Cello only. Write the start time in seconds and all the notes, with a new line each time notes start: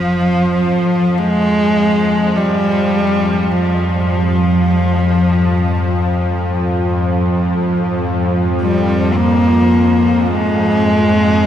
Already playing: F3
1.18 G#3
2.36 G3
3.52 F3
8.62 G3
9.12 A#3 C4
10.28 G#3